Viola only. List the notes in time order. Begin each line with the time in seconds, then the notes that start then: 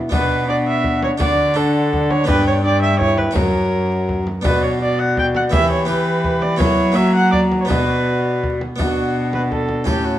0.13 B4
0.49 D5
0.68 E5
1.04 C#5
1.20 D5
1.57 A4
2.11 C#5
2.29 B4
2.47 C#5
2.65 D5
2.82 E5
3.00 C#5
3.18 B4
3.37 A#4
4.46 B4
4.64 C#5
4.82 D5
4.99 F#5
5.19 G5
5.36 F#5
5.53 E5
5.72 C#5
5.89 B4
6.42 D5
6.60 C#5
6.96 E5
7.16 F#5
7.32 D5
7.61 C#5
7.69 B4
8.80 F#4
9.34 B4
9.52 A4
9.88 G4
10.05 F#4